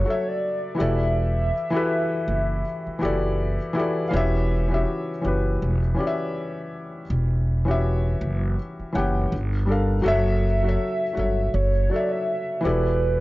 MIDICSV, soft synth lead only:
0, 0, Header, 1, 2, 480
1, 0, Start_track
1, 0, Tempo, 740741
1, 753, Time_signature, 4, 2, 24, 8
1, 8556, End_track
2, 0, Start_track
2, 0, Title_t, "Soft synth lead"
2, 0, Program_c, 0, 80
2, 0, Note_on_c, 0, 73, 93
2, 181, Note_on_c, 0, 74, 109
2, 191, Note_off_c, 0, 73, 0
2, 518, Note_on_c, 0, 76, 110
2, 528, Note_off_c, 0, 74, 0
2, 2196, Note_off_c, 0, 76, 0
2, 2644, Note_on_c, 0, 77, 82
2, 2677, Note_off_c, 0, 77, 0
2, 6516, Note_on_c, 0, 76, 117
2, 7476, Note_on_c, 0, 73, 90
2, 7486, Note_off_c, 0, 76, 0
2, 7710, Note_on_c, 0, 74, 100
2, 7720, Note_off_c, 0, 73, 0
2, 7851, Note_on_c, 0, 76, 103
2, 7861, Note_off_c, 0, 74, 0
2, 8194, Note_on_c, 0, 71, 99
2, 8204, Note_off_c, 0, 76, 0
2, 8556, Note_off_c, 0, 71, 0
2, 8556, End_track
0, 0, End_of_file